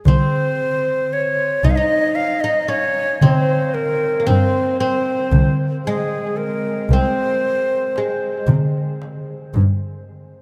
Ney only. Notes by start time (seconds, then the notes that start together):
0.06 C5
1.13 C#5
1.65 D#5
1.70 F5
1.76 D#5
2.15 F5
2.41 D#5
2.69 C#5
3.23 C5
3.74 A#4
4.27 C5
4.80 C5
5.86 G#4
6.37 A#4
6.91 C5